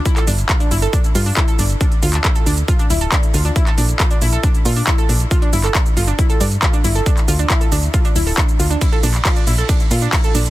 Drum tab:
RD |----------------|----------------|----------------|----------------|
HH |xxoxxxoxxxooxxox|xxoxxxoxxxoxxxox|xxoxxxoxxxoo-xox|xxoxxxoxxxoxxxox|
SH |xxxxxxxxxxxxxxxx|x-xxxxxxxxxxxxxx|x-xxxxxxxxxxxxxx|x-xxxxxxxxxxxxxx|
CP |-x--x-------x---|---xx-------x---|-x--x-------x---|---xx-------x---|
BD |o---o---o---o---|o---o---o---o---|o---o---o---o---|o---o---o---o---|

RD |----------------|x---x---x---x---|
HH |xxoxxxoxxxoo-xox|xxoxxxoxxxoxxxox|
SH |xxxxxxxxxxxxxxxx|x-xxxxxxxxxxxxxx|
CP |-x--x-------x---|---xx-------x---|
BD |o---o---o---o---|o---o---o---o---|